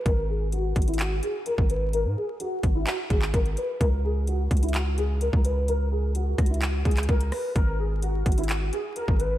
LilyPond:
<<
  \new Staff \with { instrumentName = "Grand piano" } { \time 4/4 \key gis \minor \tempo 4 = 128 ais'8 gis'8 fis'8. e'16 fis'8 gis'8 ais'8 b'8 | ais'8 gis'8 fis'8. e'16 fis'8 gis'8 ais'8 b'8 | ais'8 gis'8 fis'8. e'16 fis'8 gis'8 ais'8 b'8 | ais'8 gis'8 fis'8. e'16 fis'8 gis'8 ais'8 b'8 |
ais'8 gis'8 fis'8. e'16 fis'8 gis'8 ais'8 b'8 | }
  \new Staff \with { instrumentName = "808-style bass" } { \clef bass \time 4/4 \key gis \minor gis,,4. gis,,4 r8. gis,,8.~ | gis,,16 gis,16 r4 gis,,8 r8 gis,,8 gis,,8 r8 | cis,4. cis,4.~ cis,16 cis,8.~ | cis,4. cis,4 cis,8 cis,8 r8 |
gis,,4. gis,,4 r8. gis,,8. | }
  \new DrumStaff \with { instrumentName = "Drums" } \drummode { \time 4/4 <hh bd>4 hh8 <hh bd>32 hh32 hh32 hh32 <hc hh>8 hh8 hh16 bd16 hh8 | hh4 hh8 <hh bd>8 <hc hh>8 <hh bd>16 hc16 <hh bd>16 hh16 hh8 | <hh bd>4 hh8 <hh bd>32 hh32 hh32 hh32 <hc hh>8 hh8 hh16 bd16 hh8 | hh4 \tuplet 3/2 { hh16 r16 r16 <hh bd ss>16 hh16 hh16 } <hc hh>8 <hh bd>32 hh32 <hc hh>32 hh32 <hh bd>16 hh16 <hho ss>8 |
<hh bd>4 hh8 <hh bd>32 hh32 hh32 hh32 <hc hh>8 hh8 hh16 bd16 hh8 | }
>>